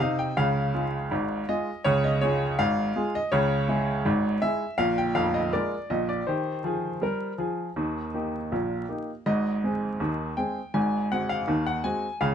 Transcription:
0.00 0.29 C3 medium
0.00 0.30 D#4 medium
0.00 0.18 F5 medium
0.19 0.37 G5 medium
0.37 0.68 C#2 medium
0.37 0.68 C#3 medium
0.37 1.48 F5 medium
0.74 0.94 G#3 soft
0.74 0.95 F4 soft
0.74 0.95 G#4 soft
1.11 1.43 G#1 medium
1.11 1.43 G#2 medium
1.48 1.69 G#3 soft
1.48 1.69 F4 medium
1.48 1.70 G#4 soft
1.48 1.85 D#5 medium
1.84 2.16 C#2 medium
1.84 2.17 C#3 medium
1.84 2.03 C#5 medium
2.04 2.22 D#5 medium
2.21 2.42 G#3 soft
2.21 2.43 F4 medium
2.21 2.43 G#4 medium
2.21 2.58 C#5 medium
2.59 2.90 G#1 medium
2.59 2.90 G#2 medium
2.59 3.14 F5 loud
2.96 3.16 G#3 medium
2.96 3.16 F4 medium
2.96 3.16 G#4 medium
3.15 3.33 D#5 medium
3.32 3.64 C#2 medium
3.32 3.64 C#3 medium
3.32 4.42 C#5 medium
3.68 3.89 G#3 soft
3.68 3.89 E4 soft
3.68 3.89 G#4 medium
4.05 4.37 G#1 medium
4.05 4.37 G#2 medium
4.42 4.62 G#3 soft
4.42 4.63 E4 medium
4.42 4.63 G#4 medium
4.42 4.79 E5 medium
4.78 5.08 A#1 medium
4.78 5.08 A#2 medium
4.78 4.97 F5 loud
4.98 5.16 G5 medium
5.15 5.45 F1 medium
5.15 5.45 F2 medium
5.15 5.34 F5 medium
5.34 5.53 D#5 medium
5.53 5.73 G#3 soft
5.53 5.73 F4 soft
5.53 5.74 A#4 soft
5.53 5.90 D5 medium
5.90 6.20 A#1 medium
5.90 6.20 A#2 medium
5.90 6.09 D#5 medium
6.09 6.27 D5 medium
6.27 6.57 D#3 medium
6.27 6.58 G4 medium
6.27 8.88 C5 medium
6.64 6.94 F3 medium
6.64 6.95 G#4 medium
7.02 7.31 G3 medium
7.02 7.32 A#4 medium
7.38 7.68 F3 medium
7.38 7.69 G#4 medium
7.76 8.08 D#2 medium
7.76 8.08 D#3 medium
8.14 8.34 A#3 soft
8.14 8.35 D#4 soft
8.14 8.35 G4 soft
8.52 8.83 A#1 medium
8.52 8.83 A#2 medium
8.89 9.09 A#3 soft
8.89 9.09 D#4 soft
8.89 9.10 G4 soft
9.26 9.57 G#1 medium
9.26 9.57 G#2 medium
9.26 10.37 D#5 medium
9.64 9.84 G#3 soft
9.64 9.84 C4 soft
9.64 9.85 G#4 soft
10.00 10.31 D#2 medium
10.00 10.31 D#3 medium
10.37 10.57 G#3 soft
10.37 10.58 C4 soft
10.37 10.58 G#4 soft
10.37 10.74 G5 medium
10.74 11.05 G#1 medium
10.74 11.05 G#2 medium
10.74 11.11 G#5 medium
11.12 11.32 G#3 soft
11.12 11.32 C4 soft
11.12 11.32 F#4 soft
11.12 11.29 F#5 medium
11.29 11.66 F5 medium
11.47 11.79 D#2 medium
11.47 11.79 D#3 medium
11.67 11.85 F#5 medium
11.84 12.05 G#3 soft
11.84 12.05 C4 soft
11.84 12.05 F#4 soft
11.84 12.21 G#5 medium
12.21 12.35 C#2 medium
12.21 12.35 C#3 medium
12.21 12.35 F5 medium

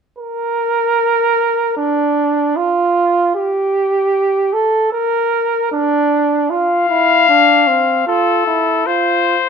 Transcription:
0.18 1.73 A#4 medium
1.77 2.58 D4 medium
2.56 3.35 F4 medium
3.35 4.54 G4 medium
4.53 4.92 A4 medium
4.93 5.70 A#4 medium
5.72 6.52 D4 medium
6.50 6.88 F4 medium
6.50 8.03 F5 loud
6.89 7.28 E4 medium
7.28 7.69 D4 medium
7.67 8.06 C4 medium
8.07 8.46 F4 medium
8.07 8.88 A4 medium
8.46 8.85 E4 medium
8.86 9.36 F4 medium
8.86 9.49 C5 medium

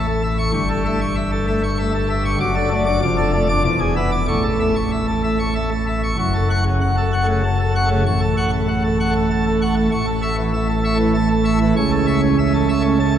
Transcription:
0.00 0.51 A1 medium
0.00 0.51 A2 medium
0.08 0.22 A4 medium
0.23 0.37 E5 medium
0.38 0.51 C#6 medium
0.53 2.36 G1 medium
0.53 2.36 G2 medium
0.53 0.68 C#6 loud
0.70 0.84 A4 medium
0.85 0.99 A3 medium
0.85 0.99 E5 medium
1.01 1.15 C#6 medium
1.16 1.30 E5 medium
1.32 1.46 A4 medium
1.48 1.61 A3 medium
1.48 1.61 E5 medium
1.63 1.77 C#6 medium
1.79 1.92 A3 medium
1.79 1.93 E5 medium
1.95 2.08 A4 medium
2.10 2.23 E5 medium
2.25 2.38 C#6 medium
2.40 3.00 F#1 medium
2.40 3.00 F#2 medium
2.40 2.54 D6 loud
2.55 2.69 D4 medium
2.55 2.69 A4 medium
2.71 2.85 A3 medium
2.71 2.85 D5 medium
2.86 2.99 D4 medium
2.86 2.99 D6 medium
3.02 3.63 F1 medium
3.02 3.63 F2 medium
3.02 3.16 D6 loud
3.17 3.31 D4 medium
3.17 3.31 A4 medium
3.33 3.47 A3 medium
3.33 3.47 D5 medium
3.49 3.62 D4 medium
3.49 3.62 D6 medium
3.64 4.26 E1 medium
3.64 4.26 E2 medium
3.64 3.79 D6 loud
3.80 3.94 G#4 medium
3.96 4.10 B3 medium
3.96 4.10 E5 medium
4.12 4.25 D6 medium
4.28 6.15 A1 medium
4.28 6.15 A2 medium
4.28 4.42 C#6 loud
4.43 4.58 A4 medium
4.60 4.74 A3 medium
4.60 4.74 E5 medium
4.76 4.90 C#6 medium
4.92 5.06 E5 medium
5.07 5.22 A4 medium
5.24 5.38 A3 medium
5.24 5.38 E5 medium
5.39 5.53 C#6 medium
5.55 5.70 A3 medium
5.55 5.69 E5 medium
5.71 5.85 A4 medium
5.87 6.01 E5 medium
6.03 6.16 C#6 medium
6.19 8.02 F#1 medium
6.19 8.02 F#2 medium
6.19 6.33 C#6 medium
6.34 6.48 A4 medium
6.50 6.63 F#5 medium
6.50 6.63 C#6 medium
6.66 6.80 C#3 medium
6.81 6.95 F#5 medium
6.97 7.11 A4 medium
7.12 7.26 F#5 medium
7.12 7.26 C#6 medium
7.23 7.42 A3 medium
7.28 7.42 C#3 medium
7.43 7.57 A5 medium
7.59 7.73 A4 medium
7.75 7.88 F#5 medium
7.75 7.88 C#6 medium
7.85 8.03 A3 medium
7.91 8.04 C#3 medium
8.06 9.88 A1 medium
8.06 9.88 A2 medium
8.06 8.20 C#6 medium
8.21 8.35 A4 medium
8.37 8.50 F#5 medium
8.37 8.50 C#6 medium
8.53 8.67 A3 medium
8.68 8.82 F#5 medium
8.84 8.98 A4 medium
9.00 9.13 F#5 medium
9.00 9.13 C#6 medium
9.10 9.13 A3 medium
9.15 9.29 A3 medium
9.31 9.44 A5 medium
9.46 9.60 A4 medium
9.61 9.74 F#5 medium
9.61 9.74 C#6 medium
9.72 9.74 A3 medium
9.76 9.89 A3 medium
9.92 11.72 A1 medium
9.92 11.72 A2 medium
9.92 10.05 C#6 loud
10.07 10.21 A4 medium
10.22 10.35 E5 medium
10.22 10.35 C#6 medium
10.38 10.52 E3 medium
10.53 10.67 E5 medium
10.69 10.83 A4 medium
10.84 10.97 E5 medium
10.84 10.97 C#6 medium
10.94 11.12 A3 medium
10.99 11.13 E3 medium
11.14 11.28 A5 medium
11.30 11.44 A4 medium
11.45 11.58 E5 medium
11.45 11.58 C#6 medium
11.56 11.73 A3 medium
11.61 11.74 E3 medium
11.76 13.18 C#2 medium
11.76 13.18 C#3 medium
11.76 11.90 C#6 loud
11.92 12.05 A4 medium
12.07 12.20 E5 medium
12.07 12.20 C#6 medium
12.23 12.37 C#4 medium
12.38 12.52 E5 medium
12.54 12.67 A4 medium
12.69 12.82 E5 medium
12.69 12.82 C#6 medium
12.80 12.98 A3 medium
12.84 12.98 C#4 medium
13.00 13.13 A5 medium

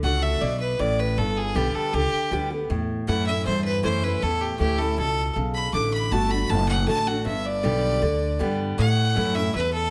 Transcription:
0.00 0.40 C#2 medium
0.00 0.38 D3 medium
0.00 0.39 A3 medium
0.00 0.40 D4 medium
0.00 0.24 F#5 medium
0.04 0.40 F#4 medium
0.22 0.43 E5 medium
0.41 0.78 B1 medium
0.41 0.78 B2 medium
0.41 0.59 D5 medium
0.60 0.81 B4 medium
0.79 1.16 A1 medium
0.79 1.15 A2 medium
0.79 1.01 D5 medium
0.99 1.19 B4 medium
1.17 1.54 G1 medium
1.17 1.90 G2 medium
1.17 1.38 A4 medium
1.37 1.57 G#4 medium
1.55 1.73 B1 medium
1.55 1.91 D3 medium
1.55 1.92 G3 medium
1.55 1.92 B3 medium
1.55 1.76 G4 medium
1.55 1.92 G4 medium
1.75 1.95 A4 medium
1.75 muted upright bass stroke soft
1.93 2.11 C#2 medium
1.93 2.30 D3 medium
1.93 2.31 G4 loud
2.12 muted upright bass stroke soft
2.31 2.68 D2 medium
2.31 2.50 D3 medium
2.31 2.50 G3 medium
2.31 2.50 B3 medium
2.31 2.49 G4 loud
2.50 2.70 B3 soft
2.50 2.69 G4 medium
2.70 3.07 E2 medium
2.70 3.42 A2 medium
3.07 3.45 F#2 loud
3.07 3.26 E3 medium
3.07 3.26 A3 medium
3.07 3.26 C#4 loud
3.07 3.25 E4 medium
3.07 3.26 F#5 medium
3.26 3.46 C#4 soft
3.26 3.45 E4 medium
3.26 3.45 E5 loud
3.45 4.18 E2 medium
3.45 3.83 G2 medium
3.45 3.64 C5 medium
3.64 3.83 B4 loud
3.83 4.21 F#2 medium
3.83 4.02 E3 medium
3.83 4.02 A3 medium
3.83 4.02 C#4 loud
3.83 4.01 E4 medium
3.83 4.05 C5 loud
4.02 4.21 C#4 soft
4.02 4.21 E4 medium
4.02 4.24 B4 medium
4.22 4.59 E2 medium
4.22 4.94 A2 medium
4.22 4.42 A4 loud
4.41 4.59 G4 medium
4.59 4.97 D2 loud
4.59 4.78 E3 medium
4.59 4.78 A3 medium
4.59 4.79 C#4 medium
4.59 4.77 E4 medium
4.59 4.80 G4 medium
4.78 4.98 C#4 soft
4.78 4.97 E4 medium
4.78 4.97 A4 medium
4.98 5.35 C#2 medium
4.98 5.34 B2 medium
4.98 5.35 A4 loud
5.36 5.72 B1 medium
5.36 5.72 C#3 medium
5.55 5.73 B5 medium
5.73 6.10 A1 medium
5.73 6.10 D3 medium
5.73 5.92 D6 medium
5.94 6.13 B5 medium
6.11 6.49 G1 medium
6.11 6.30 D3 medium
6.11 6.30 A3 medium
6.11 6.31 D4 medium
6.11 6.29 F#4 medium
6.11 6.32 A5 medium
6.31 6.50 D4 soft
6.31 6.49 F#4 medium
6.31 6.51 B5 medium
6.49 6.87 F#1 loud
6.49 7.22 A2 medium
6.49 6.68 A5 loud
6.68 6.87 F#5 medium
6.87 7.25 A1 medium
6.87 7.06 D3 medium
6.87 7.06 A3 medium
6.87 7.07 D4 medium
6.87 7.05 F#4 medium
6.87 7.08 A5 loud
7.06 7.26 D4 soft
7.06 7.25 F#4 medium
7.06 7.25 F#5 medium
7.25 7.62 G1 medium
7.25 7.98 G2 medium
7.25 7.47 E5 medium
7.45 8.56 D5 loud
7.63 8.01 B1 loud
7.63 8.00 D3 medium
7.63 8.00 G3 medium
7.63 8.00 B3 medium
7.63 8.01 G4 loud
8.02 8.39 D2 medium
8.02 8.38 D3 medium
8.39 8.77 G2 medium
8.39 8.76 D3 medium
8.39 8.76 G3 medium
8.39 8.76 B3 loud
8.39 8.77 G4 medium
8.78 9.50 A2 medium
8.78 9.15 A2 medium
8.78 9.36 F#5 loud
9.15 9.53 F#2 loud
9.15 9.34 E3 medium
9.15 9.34 A3 medium
9.15 9.35 C#4 medium
9.15 9.34 E4 medium
9.35 9.54 C#4 medium
9.35 9.53 E4 medium
9.35 9.53 E5 loud
9.54 9.90 E2 medium
9.54 9.90 E2 loud
9.54 9.72 B4 medium
9.73 9.90 A4 loud

